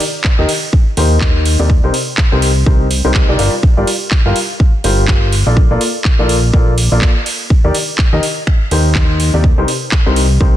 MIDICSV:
0, 0, Header, 1, 4, 480
1, 0, Start_track
1, 0, Tempo, 483871
1, 1683, Time_signature, 4, 2, 24, 8
1, 10483, End_track
2, 0, Start_track
2, 0, Title_t, "Upright piano"
2, 0, Program_c, 0, 0
2, 383, Note_on_c, 0, 51, 90
2, 383, Note_on_c, 0, 63, 85
2, 383, Note_on_c, 0, 67, 85
2, 383, Note_on_c, 0, 70, 82
2, 383, Note_on_c, 0, 75, 100
2, 475, Note_off_c, 0, 51, 0
2, 475, Note_off_c, 0, 63, 0
2, 475, Note_off_c, 0, 67, 0
2, 475, Note_off_c, 0, 70, 0
2, 476, Note_off_c, 0, 75, 0
2, 964, Note_on_c, 0, 51, 76
2, 964, Note_on_c, 0, 63, 68
2, 964, Note_on_c, 0, 67, 68
2, 964, Note_on_c, 0, 70, 69
2, 964, Note_on_c, 0, 72, 85
2, 1550, Note_off_c, 0, 51, 0
2, 1550, Note_off_c, 0, 63, 0
2, 1550, Note_off_c, 0, 67, 0
2, 1550, Note_off_c, 0, 70, 0
2, 1550, Note_off_c, 0, 72, 0
2, 1582, Note_on_c, 0, 63, 78
2, 1582, Note_on_c, 0, 67, 78
2, 1582, Note_on_c, 0, 70, 79
2, 1583, Note_on_c, 0, 48, 86
2, 1583, Note_on_c, 0, 74, 93
2, 1671, Note_off_c, 0, 48, 0
2, 1671, Note_off_c, 0, 63, 0
2, 1671, Note_off_c, 0, 67, 0
2, 1671, Note_off_c, 0, 70, 0
2, 1671, Note_off_c, 0, 74, 0
2, 1823, Note_on_c, 0, 48, 83
2, 1823, Note_on_c, 0, 63, 75
2, 1823, Note_on_c, 0, 67, 73
2, 1823, Note_on_c, 0, 70, 75
2, 1823, Note_on_c, 0, 72, 87
2, 1915, Note_off_c, 0, 48, 0
2, 1915, Note_off_c, 0, 63, 0
2, 1915, Note_off_c, 0, 67, 0
2, 1915, Note_off_c, 0, 70, 0
2, 1915, Note_off_c, 0, 72, 0
2, 2303, Note_on_c, 0, 48, 78
2, 2303, Note_on_c, 0, 63, 74
2, 2303, Note_on_c, 0, 67, 73
2, 2303, Note_on_c, 0, 70, 72
2, 2303, Note_on_c, 0, 72, 87
2, 2469, Note_off_c, 0, 48, 0
2, 2469, Note_off_c, 0, 63, 0
2, 2469, Note_off_c, 0, 67, 0
2, 2469, Note_off_c, 0, 70, 0
2, 2469, Note_off_c, 0, 72, 0
2, 2642, Note_on_c, 0, 48, 73
2, 2642, Note_on_c, 0, 63, 68
2, 2642, Note_on_c, 0, 67, 68
2, 2642, Note_on_c, 0, 70, 68
2, 2642, Note_on_c, 0, 72, 82
2, 2829, Note_off_c, 0, 67, 0
2, 2830, Note_off_c, 0, 48, 0
2, 2830, Note_off_c, 0, 63, 0
2, 2830, Note_off_c, 0, 70, 0
2, 2830, Note_off_c, 0, 72, 0
2, 3021, Note_on_c, 0, 63, 78
2, 3022, Note_on_c, 0, 48, 83
2, 3022, Note_on_c, 0, 67, 78
2, 3022, Note_on_c, 0, 70, 79
2, 3022, Note_on_c, 0, 72, 93
2, 3229, Note_off_c, 0, 48, 0
2, 3229, Note_off_c, 0, 63, 0
2, 3229, Note_off_c, 0, 67, 0
2, 3229, Note_off_c, 0, 70, 0
2, 3229, Note_off_c, 0, 72, 0
2, 3262, Note_on_c, 0, 63, 83
2, 3262, Note_on_c, 0, 67, 77
2, 3262, Note_on_c, 0, 70, 78
2, 3262, Note_on_c, 0, 74, 96
2, 3339, Note_off_c, 0, 63, 0
2, 3339, Note_off_c, 0, 67, 0
2, 3339, Note_off_c, 0, 70, 0
2, 3339, Note_off_c, 0, 74, 0
2, 3362, Note_on_c, 0, 55, 76
2, 3362, Note_on_c, 0, 65, 67
2, 3362, Note_on_c, 0, 67, 69
2, 3362, Note_on_c, 0, 70, 71
2, 3362, Note_on_c, 0, 74, 82
2, 3491, Note_off_c, 0, 55, 0
2, 3491, Note_off_c, 0, 65, 0
2, 3491, Note_off_c, 0, 67, 0
2, 3491, Note_off_c, 0, 70, 0
2, 3491, Note_off_c, 0, 74, 0
2, 3741, Note_on_c, 0, 65, 77
2, 3741, Note_on_c, 0, 67, 74
2, 3741, Note_on_c, 0, 74, 94
2, 3742, Note_on_c, 0, 55, 84
2, 3742, Note_on_c, 0, 70, 79
2, 3834, Note_off_c, 0, 67, 0
2, 3835, Note_off_c, 0, 55, 0
2, 3835, Note_off_c, 0, 65, 0
2, 3835, Note_off_c, 0, 70, 0
2, 3835, Note_off_c, 0, 74, 0
2, 4222, Note_on_c, 0, 55, 92
2, 4222, Note_on_c, 0, 67, 83
2, 4222, Note_on_c, 0, 70, 85
2, 4222, Note_on_c, 0, 77, 100
2, 4223, Note_on_c, 0, 65, 85
2, 4315, Note_off_c, 0, 55, 0
2, 4315, Note_off_c, 0, 65, 0
2, 4315, Note_off_c, 0, 67, 0
2, 4315, Note_off_c, 0, 70, 0
2, 4315, Note_off_c, 0, 77, 0
2, 4803, Note_on_c, 0, 55, 75
2, 4803, Note_on_c, 0, 65, 72
2, 4803, Note_on_c, 0, 67, 71
2, 4803, Note_on_c, 0, 70, 70
2, 4803, Note_on_c, 0, 72, 83
2, 5271, Note_off_c, 0, 55, 0
2, 5271, Note_off_c, 0, 65, 0
2, 5271, Note_off_c, 0, 67, 0
2, 5271, Note_off_c, 0, 70, 0
2, 5271, Note_off_c, 0, 72, 0
2, 5421, Note_on_c, 0, 58, 89
2, 5421, Note_on_c, 0, 65, 78
2, 5421, Note_on_c, 0, 69, 79
2, 5421, Note_on_c, 0, 74, 95
2, 5422, Note_on_c, 0, 70, 78
2, 5514, Note_off_c, 0, 58, 0
2, 5514, Note_off_c, 0, 65, 0
2, 5515, Note_off_c, 0, 69, 0
2, 5515, Note_off_c, 0, 70, 0
2, 5515, Note_off_c, 0, 74, 0
2, 5661, Note_on_c, 0, 65, 76
2, 5662, Note_on_c, 0, 58, 83
2, 5662, Note_on_c, 0, 69, 74
2, 5662, Note_on_c, 0, 70, 73
2, 5662, Note_on_c, 0, 74, 92
2, 5755, Note_off_c, 0, 58, 0
2, 5755, Note_off_c, 0, 65, 0
2, 5755, Note_off_c, 0, 69, 0
2, 5755, Note_off_c, 0, 70, 0
2, 5755, Note_off_c, 0, 74, 0
2, 6141, Note_on_c, 0, 65, 73
2, 6142, Note_on_c, 0, 58, 78
2, 6142, Note_on_c, 0, 69, 73
2, 6142, Note_on_c, 0, 70, 74
2, 6142, Note_on_c, 0, 74, 87
2, 6309, Note_off_c, 0, 58, 0
2, 6309, Note_off_c, 0, 65, 0
2, 6309, Note_off_c, 0, 69, 0
2, 6309, Note_off_c, 0, 70, 0
2, 6309, Note_off_c, 0, 74, 0
2, 6482, Note_on_c, 0, 65, 70
2, 6482, Note_on_c, 0, 69, 69
2, 6482, Note_on_c, 0, 70, 68
2, 6482, Note_on_c, 0, 74, 80
2, 6483, Note_on_c, 0, 58, 74
2, 6670, Note_off_c, 0, 58, 0
2, 6670, Note_off_c, 0, 65, 0
2, 6670, Note_off_c, 0, 69, 0
2, 6670, Note_off_c, 0, 70, 0
2, 6670, Note_off_c, 0, 74, 0
2, 6862, Note_on_c, 0, 58, 81
2, 6862, Note_on_c, 0, 74, 88
2, 6863, Note_on_c, 0, 65, 74
2, 6863, Note_on_c, 0, 69, 71
2, 6863, Note_on_c, 0, 70, 74
2, 7029, Note_off_c, 0, 58, 0
2, 7029, Note_off_c, 0, 65, 0
2, 7029, Note_off_c, 0, 69, 0
2, 7029, Note_off_c, 0, 70, 0
2, 7029, Note_off_c, 0, 74, 0
2, 7582, Note_on_c, 0, 51, 83
2, 7582, Note_on_c, 0, 67, 78
2, 7582, Note_on_c, 0, 70, 78
2, 7582, Note_on_c, 0, 74, 92
2, 7583, Note_on_c, 0, 63, 76
2, 7675, Note_off_c, 0, 51, 0
2, 7675, Note_off_c, 0, 63, 0
2, 7675, Note_off_c, 0, 67, 0
2, 7675, Note_off_c, 0, 70, 0
2, 7675, Note_off_c, 0, 74, 0
2, 8062, Note_on_c, 0, 51, 92
2, 8062, Note_on_c, 0, 63, 83
2, 8062, Note_on_c, 0, 67, 83
2, 8062, Note_on_c, 0, 70, 82
2, 8062, Note_on_c, 0, 75, 101
2, 8155, Note_off_c, 0, 51, 0
2, 8155, Note_off_c, 0, 63, 0
2, 8155, Note_off_c, 0, 67, 0
2, 8155, Note_off_c, 0, 70, 0
2, 8155, Note_off_c, 0, 75, 0
2, 8644, Note_on_c, 0, 51, 74
2, 8644, Note_on_c, 0, 63, 69
2, 8644, Note_on_c, 0, 67, 70
2, 8644, Note_on_c, 0, 70, 70
2, 8644, Note_on_c, 0, 72, 84
2, 9230, Note_off_c, 0, 51, 0
2, 9230, Note_off_c, 0, 63, 0
2, 9230, Note_off_c, 0, 67, 0
2, 9230, Note_off_c, 0, 70, 0
2, 9230, Note_off_c, 0, 72, 0
2, 9263, Note_on_c, 0, 48, 89
2, 9263, Note_on_c, 0, 63, 77
2, 9263, Note_on_c, 0, 67, 81
2, 9263, Note_on_c, 0, 70, 78
2, 9263, Note_on_c, 0, 74, 95
2, 9351, Note_off_c, 0, 48, 0
2, 9351, Note_off_c, 0, 63, 0
2, 9351, Note_off_c, 0, 67, 0
2, 9351, Note_off_c, 0, 70, 0
2, 9351, Note_off_c, 0, 74, 0
2, 9502, Note_on_c, 0, 72, 89
2, 9503, Note_on_c, 0, 48, 81
2, 9503, Note_on_c, 0, 63, 73
2, 9503, Note_on_c, 0, 67, 76
2, 9503, Note_on_c, 0, 70, 74
2, 9595, Note_off_c, 0, 48, 0
2, 9595, Note_off_c, 0, 63, 0
2, 9595, Note_off_c, 0, 67, 0
2, 9595, Note_off_c, 0, 70, 0
2, 9595, Note_off_c, 0, 72, 0
2, 9982, Note_on_c, 0, 48, 80
2, 9982, Note_on_c, 0, 63, 73
2, 9982, Note_on_c, 0, 67, 72
2, 9982, Note_on_c, 0, 70, 74
2, 9982, Note_on_c, 0, 72, 87
2, 10149, Note_off_c, 0, 48, 0
2, 10149, Note_off_c, 0, 63, 0
2, 10149, Note_off_c, 0, 67, 0
2, 10149, Note_off_c, 0, 70, 0
2, 10149, Note_off_c, 0, 72, 0
2, 10322, Note_on_c, 0, 48, 76
2, 10322, Note_on_c, 0, 63, 68
2, 10322, Note_on_c, 0, 67, 69
2, 10322, Note_on_c, 0, 70, 69
2, 10322, Note_on_c, 0, 72, 83
2, 10483, Note_off_c, 0, 48, 0
2, 10483, Note_off_c, 0, 63, 0
2, 10483, Note_off_c, 0, 67, 0
2, 10483, Note_off_c, 0, 70, 0
2, 10483, Note_off_c, 0, 72, 0
2, 10483, End_track
3, 0, Start_track
3, 0, Title_t, "Analog synth bass"
3, 0, Program_c, 1, 38
3, 383, Note_on_c, 1, 39, 95
3, 455, Note_off_c, 1, 39, 0
3, 963, Note_on_c, 1, 39, 97
3, 1555, Note_off_c, 1, 39, 0
3, 1582, Note_on_c, 1, 39, 96
3, 1794, Note_off_c, 1, 39, 0
3, 1823, Note_on_c, 1, 36, 96
3, 1895, Note_off_c, 1, 36, 0
3, 2302, Note_on_c, 1, 36, 95
3, 2623, Note_off_c, 1, 36, 0
3, 2643, Note_on_c, 1, 36, 96
3, 2995, Note_off_c, 1, 36, 0
3, 3022, Note_on_c, 1, 36, 97
3, 3235, Note_off_c, 1, 36, 0
3, 3262, Note_on_c, 1, 36, 94
3, 3343, Note_off_c, 1, 36, 0
3, 3363, Note_on_c, 1, 31, 97
3, 3463, Note_off_c, 1, 31, 0
3, 3743, Note_on_c, 1, 31, 99
3, 3815, Note_off_c, 1, 31, 0
3, 4222, Note_on_c, 1, 31, 93
3, 4295, Note_off_c, 1, 31, 0
3, 4802, Note_on_c, 1, 31, 96
3, 5394, Note_off_c, 1, 31, 0
3, 5421, Note_on_c, 1, 34, 97
3, 5634, Note_off_c, 1, 34, 0
3, 5661, Note_on_c, 1, 34, 100
3, 5734, Note_off_c, 1, 34, 0
3, 6141, Note_on_c, 1, 34, 95
3, 6462, Note_off_c, 1, 34, 0
3, 6483, Note_on_c, 1, 34, 94
3, 6834, Note_off_c, 1, 34, 0
3, 6862, Note_on_c, 1, 34, 94
3, 7001, Note_off_c, 1, 34, 0
3, 7582, Note_on_c, 1, 39, 99
3, 7655, Note_off_c, 1, 39, 0
3, 8062, Note_on_c, 1, 39, 94
3, 8135, Note_off_c, 1, 39, 0
3, 8643, Note_on_c, 1, 39, 93
3, 9235, Note_off_c, 1, 39, 0
3, 9262, Note_on_c, 1, 39, 95
3, 9475, Note_off_c, 1, 39, 0
3, 9502, Note_on_c, 1, 36, 99
3, 9575, Note_off_c, 1, 36, 0
3, 9982, Note_on_c, 1, 36, 98
3, 10303, Note_off_c, 1, 36, 0
3, 10323, Note_on_c, 1, 36, 98
3, 10483, Note_off_c, 1, 36, 0
3, 10483, End_track
4, 0, Start_track
4, 0, Title_t, "Drums"
4, 4, Note_on_c, 9, 46, 102
4, 103, Note_off_c, 9, 46, 0
4, 239, Note_on_c, 9, 39, 120
4, 244, Note_on_c, 9, 36, 113
4, 338, Note_off_c, 9, 39, 0
4, 343, Note_off_c, 9, 36, 0
4, 483, Note_on_c, 9, 46, 106
4, 583, Note_off_c, 9, 46, 0
4, 724, Note_on_c, 9, 36, 115
4, 823, Note_off_c, 9, 36, 0
4, 963, Note_on_c, 9, 46, 104
4, 1062, Note_off_c, 9, 46, 0
4, 1198, Note_on_c, 9, 39, 123
4, 1203, Note_on_c, 9, 36, 114
4, 1298, Note_off_c, 9, 39, 0
4, 1303, Note_off_c, 9, 36, 0
4, 1443, Note_on_c, 9, 46, 102
4, 1542, Note_off_c, 9, 46, 0
4, 1683, Note_on_c, 9, 36, 120
4, 1782, Note_off_c, 9, 36, 0
4, 1923, Note_on_c, 9, 46, 101
4, 2022, Note_off_c, 9, 46, 0
4, 2158, Note_on_c, 9, 39, 124
4, 2163, Note_on_c, 9, 36, 120
4, 2257, Note_off_c, 9, 39, 0
4, 2262, Note_off_c, 9, 36, 0
4, 2402, Note_on_c, 9, 46, 106
4, 2502, Note_off_c, 9, 46, 0
4, 2643, Note_on_c, 9, 36, 123
4, 2742, Note_off_c, 9, 36, 0
4, 2883, Note_on_c, 9, 46, 109
4, 2982, Note_off_c, 9, 46, 0
4, 3118, Note_on_c, 9, 39, 122
4, 3123, Note_on_c, 9, 36, 118
4, 3217, Note_off_c, 9, 39, 0
4, 3222, Note_off_c, 9, 36, 0
4, 3362, Note_on_c, 9, 46, 105
4, 3461, Note_off_c, 9, 46, 0
4, 3603, Note_on_c, 9, 36, 126
4, 3702, Note_off_c, 9, 36, 0
4, 3843, Note_on_c, 9, 46, 105
4, 3942, Note_off_c, 9, 46, 0
4, 4077, Note_on_c, 9, 39, 117
4, 4083, Note_on_c, 9, 36, 120
4, 4177, Note_off_c, 9, 39, 0
4, 4182, Note_off_c, 9, 36, 0
4, 4322, Note_on_c, 9, 46, 108
4, 4421, Note_off_c, 9, 46, 0
4, 4563, Note_on_c, 9, 36, 126
4, 4662, Note_off_c, 9, 36, 0
4, 4802, Note_on_c, 9, 46, 109
4, 4901, Note_off_c, 9, 46, 0
4, 5037, Note_on_c, 9, 39, 122
4, 5043, Note_on_c, 9, 36, 122
4, 5137, Note_off_c, 9, 39, 0
4, 5142, Note_off_c, 9, 36, 0
4, 5282, Note_on_c, 9, 46, 108
4, 5382, Note_off_c, 9, 46, 0
4, 5522, Note_on_c, 9, 36, 123
4, 5622, Note_off_c, 9, 36, 0
4, 5762, Note_on_c, 9, 46, 107
4, 5861, Note_off_c, 9, 46, 0
4, 5997, Note_on_c, 9, 39, 114
4, 6003, Note_on_c, 9, 36, 120
4, 6097, Note_off_c, 9, 39, 0
4, 6102, Note_off_c, 9, 36, 0
4, 6242, Note_on_c, 9, 46, 110
4, 6342, Note_off_c, 9, 46, 0
4, 6483, Note_on_c, 9, 36, 124
4, 6582, Note_off_c, 9, 36, 0
4, 6722, Note_on_c, 9, 46, 104
4, 6821, Note_off_c, 9, 46, 0
4, 6958, Note_on_c, 9, 39, 116
4, 6963, Note_on_c, 9, 36, 118
4, 7057, Note_off_c, 9, 39, 0
4, 7062, Note_off_c, 9, 36, 0
4, 7203, Note_on_c, 9, 46, 107
4, 7302, Note_off_c, 9, 46, 0
4, 7443, Note_on_c, 9, 36, 120
4, 7542, Note_off_c, 9, 36, 0
4, 7683, Note_on_c, 9, 46, 99
4, 7782, Note_off_c, 9, 46, 0
4, 7918, Note_on_c, 9, 39, 108
4, 7923, Note_on_c, 9, 36, 114
4, 8018, Note_off_c, 9, 39, 0
4, 8022, Note_off_c, 9, 36, 0
4, 8163, Note_on_c, 9, 46, 105
4, 8263, Note_off_c, 9, 46, 0
4, 8403, Note_on_c, 9, 36, 119
4, 8404, Note_on_c, 9, 26, 78
4, 8502, Note_off_c, 9, 36, 0
4, 8503, Note_off_c, 9, 26, 0
4, 8643, Note_on_c, 9, 46, 100
4, 8743, Note_off_c, 9, 46, 0
4, 8879, Note_on_c, 9, 39, 113
4, 8883, Note_on_c, 9, 36, 116
4, 8978, Note_off_c, 9, 39, 0
4, 8982, Note_off_c, 9, 36, 0
4, 9124, Note_on_c, 9, 46, 105
4, 9223, Note_off_c, 9, 46, 0
4, 9363, Note_on_c, 9, 36, 115
4, 9462, Note_off_c, 9, 36, 0
4, 9603, Note_on_c, 9, 46, 96
4, 9703, Note_off_c, 9, 46, 0
4, 9838, Note_on_c, 9, 39, 111
4, 9843, Note_on_c, 9, 36, 108
4, 9937, Note_off_c, 9, 39, 0
4, 9942, Note_off_c, 9, 36, 0
4, 10082, Note_on_c, 9, 46, 104
4, 10182, Note_off_c, 9, 46, 0
4, 10323, Note_on_c, 9, 36, 114
4, 10422, Note_off_c, 9, 36, 0
4, 10483, End_track
0, 0, End_of_file